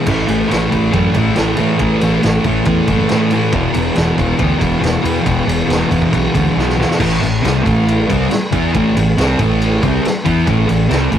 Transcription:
0.06 A1 A2 E3 A3, kick, crash
0.27 A1 A2 E3 A3, ride
0.49 A1 A2 E3 A3, snare, ride
0.71 A1 A2 E3 A3, kick, ride
0.92 F#2 A2 E3 A3, kick, ride
1.14 A1 A2 E3 A3, kick, ride
1.36 A1 A2 E3 A3, snare, ride
1.57 A2 E3 A3, ride
1.79 A1 A2 E3 A3, kick, ride
2.01 A1 A2 E3 A3, ride
2.22 A1 A2 E3 A3, snare, ride
2.44 A1 A2 E3 A3, kick, ride
2.65 E2 A2 E3 A3, kick, ride
2.87 F#1 A2 E3 A3, kick, ride
3.09 A2 E3 A3, snare, ride
3.30 A2 E3 A3, ride
3.52 E1 E2 B2 E3, kick, ride
3.74 E1 E2 B2 E3, ride
3.95 E1 E2 B2 E3, snare, ride
4.16 E1 E2 B2 E3, kick, ride
4.38 D2 E2 B2 E3, kick, ride
4.60 E1 E2 B2 E3, kick, ride
4.80 E1 E2 B2 E3, ride
4.85 snare
5.02 E2 B2 E3, ride
5.24 E1 E2 B2 E3, kick, ride
5.44 E1 E2 B2 E3
5.49 ride
5.66 E1 E2 B2 E3
5.70 snare, ride
5.89 E1 E2 B2 E3, kick, ride
6.02 kick
6.12 B1 E2 B2 E3, kick, ride
6.33 D2 E2 B2 E3, kick, ride
6.56 B1 E2 B2 E3, snare
6.69 snare
6.77 E2 B2 E3
6.81 snare
6.91 snare
6.99 A1 A2 E3 A3, kick, crash
7.21 A1 A2 E3, ride
7.42 C2 C3 G3 C4, ride
7.46 snare
7.64 A1 A2 E3 A3, kick, ride
7.88 ride
8.08 C2 C3 G3 C4, kick, ride
8.30 muted distorted electric guitar stroke, muted fingered electric bass stroke, snare, ride
8.51 E2 E3 B3 E4, kick, ride
8.74 A1 A2 E3 A3, kick, ride
8.96 A1 A2 E3, ride
9.17 C2 C3 G3 C4, snare, ride
9.39 A1 A2 E3 A3, kick, ride
9.62 ride
9.82 C2 C3 G3 C4, kick, ride
10.04 muted distorted electric guitar stroke, muted fingered electric bass stroke, snare, ride
10.24 E2 E3 B3 E4, kick, ride
10.47 A1 A2 E3 A3, kick, ride
10.67 A1 A2 E3, ride
10.88 C2 C3 G3 C4, snare, ride
11.10 A1 A2 E3 A3, kick, ride

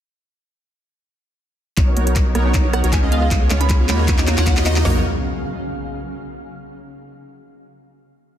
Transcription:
1.77 B1 C#3 A#3 B3 D#4 F#4 A#4 C#5, kick, clap, closed hi-hat, riser
1.88 C#4
1.97 B1 A#3 B3 D#4 F#4 A#4 C#5, closed hi-hat
2.07 D#4, closed hi-hat
2.16 A#3, kick, clap, closed hi-hat
2.26 F#4
2.35 B1 A#3 B3 D#4 F#4 A#4 C#5, cross-stick, closed hi-hat
2.45 C#4
2.54 A#3, kick, clap, closed hi-hat
2.65 D#4
2.73 A#3 F#5, cross-stick, closed hi-hat
2.84 B1 B3 D#4 F#4 A#4 C#5, closed hi-hat
2.93 A#3 G#5, kick, clap, closed hi-hat
3.03 C#2 B3 C#4 F4 G#4 D#5
3.12 G#3 F5, closed hi-hat
3.22 F4 F5
3.31 C#2 G#3 B3 C#4 F4 G#4 C#5, kick, clap, closed hi-hat
3.41 G#4
3.50 C#2 G#3 B3 C#4 F4 G#4 C#5, clap, closed hi-hat
3.61 C#4 B5, closed hi-hat
3.70 G#3 B5, kick, clap, closed hi-hat
3.80 F4
3.89 D#2 G#3 A#3 D#4 F4 F#4 C#5 B5, clap, closed hi-hat
3.99 G#4
4.08 A#3, kick, clap, closed hi-hat
4.18 D#4, clap
4.27 A#3, clap, closed hi-hat
4.38 D#2 A#3 D#4 F4 F#4 C#5 F#5, clap, closed hi-hat
4.47 A#3 F#5, kick, clap, closed hi-hat
4.57 D#2 A#3 D#4 F4 F#4 D#5, clap
4.66 A#3 D#5, clap, closed hi-hat
4.76 D#4, clap
4.85 B1 A#3 B3 D#4 F#4 A#4 C#5, snare, floor tom, open hi-hat, impact

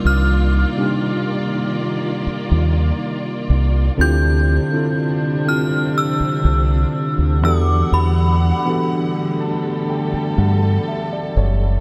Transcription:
Already playing: C3 D#3 G3 A#3 D4 D#4 F4 A#4 D5
0.05 C2 F6
0.78 C3 G3 D4 D#4 F4
0.82 G4
2.27 muted fingered electric bass stroke
2.51 D#2
3.50 C2
3.98 D2 C3 D3 F3 G3 C4 D4 E4 F4 G6
4.02 G4
4.71 D3 C4 E4 F4
4.76 A4
5.45 D3 C4 E4 F4 F6
5.50 G4
5.98 E6
6.20 muted fingered electric bass stroke
6.45 C2
7.18 D2
7.42 E2 D3 E3 G3 A3 B3 D4 F#4 G4 F#5 D6
7.46 A4
7.92 E2 B5
8.65 E3 B3 D4 F#4 G4
8.69 A4
9.40 A4 A5
9.90 G5
10.14 G5, muted fingered electric bass stroke
10.38 G2 F#5
10.88 E5
11.13 D5
11.37 F#1 C#5

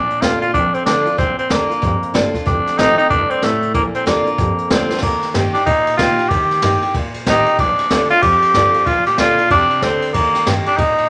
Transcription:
Already playing: A#2 D4
0.10 muted upright bass stroke, closed hi-hat
0.22 D#2 D3 A#3 D4 F4, snare, closed hi-hat
0.41 D4 F4, muted upright bass stroke, closed hi-hat
0.53 A#1 F2 D4, kick, closed hi-hat
0.74 C4, muted upright bass stroke, closed hi-hat
0.85 A#1 D3 A#3 D4 F4, snare, closed hi-hat
1.05 F2 D4 F4, closed hi-hat
1.18 A#1 A#2 C4, kick, snare, closed hi-hat
1.38 C4, muted upright bass stroke, closed hi-hat
1.50 D#2 D3 A#3 D4 F4, snare, closed hi-hat
1.69 D4 F4, muted upright bass stroke, closed hi-hat
1.82 F2 G2, kick, snare, closed hi-hat
2.03 muted upright bass stroke, closed hi-hat
2.14 G1 D3 A#3 D4 F4, snare, closed hi-hat
2.34 D4 F4, muted upright bass stroke, kick, snare, closed hi-hat
2.46 F1 F2 D4, kick, snare, closed hi-hat
2.67 muted upright bass stroke, snare, closed hi-hat
2.78 A#1 D#3 A3 C4 D#4 F4, snare, closed hi-hat
2.98 C4 D#4 F4, closed hi-hat
3.09 F1 G2 D4, kick, closed hi-hat
3.30 C4, closed hi-hat
3.42 F1 A2 A3, snare, closed hi-hat
3.62 C2, closed hi-hat
3.74 A#1 A#2 A#3, kick, closed hi-hat
3.95 C4, muted upright bass stroke, snare, closed hi-hat
4.06 D#2 D3 A#3 D4 F4, snare, closed hi-hat
4.25 D4 F4, muted upright bass stroke, closed hi-hat
4.38 F2 G2, kick, snare, closed hi-hat
4.58 muted upright bass stroke, closed hi-hat
4.70 D#2 D3 A#3 C4 D4 F4, snare, closed hi-hat
4.90 D4 F4, muted upright bass stroke, snare
4.98 A#3, snare, crash
5.02 D#2 D#3, kick
5.22 muted upright bass stroke, snare, ride
5.34 G2 D#3 A#3 D#4 G4, snare, ride
5.53 D4 D#4 G4, muted upright bass stroke, ride
5.66 A#2 D#4, kick, ride
5.87 muted upright bass stroke, ride
5.97 C3 D#3 A#3 D#4 F4 G4, kick, snare, ride
6.18 D#4 G4, ride
6.29 D#2 D#3 G4, kick, ride
6.51 muted upright bass stroke, snare, ride
6.62 G2 D#3 A#3 D#4 G4, snare, ride
6.82 D#4 G4, muted upright bass stroke, ride
6.94 A#2, kick, ride
7.14 muted upright bass stroke, ride
7.26 A1 D#3 A#3 D#4 G4, kick, snare, ride
7.46 D#4 G4, muted upright bass stroke, ride
7.59 A#1 A#2 D4, kick, ride
7.78 muted upright bass stroke, snare, ride
7.90 D2 D3 A#3 D4 F4, snare, ride
8.10 D4 F4, muted upright bass stroke, ride
8.22 F2 G4, kick, ride
8.42 ride
8.54 G2 D3 A#3 D4 F4, kick, snare, ride
8.74 D4 F4, ride
8.86 A#1 A#2 F4, kick, ride
9.06 G4, muted upright bass stroke, snare, ride
9.18 D2 D3 A#3 D4 F4, snare, ride
9.38 D4 F4, muted upright bass stroke, ride
9.50 F2 C3 D4, kick, ride
9.70 muted upright bass stroke, ride
9.82 D2 D3 C4, kick, snare, ride
10.02 ride
10.09 C4
10.13 D#2 D#3 A#3, kick, ride
10.35 muted upright bass stroke, snare, ride
10.46 G2 D#3 A#3 D#4 G4, snare, ride
10.66 D4 D#4 G4, ride
10.77 A#2 D#4, kick, ride
10.98 muted upright bass stroke, ride

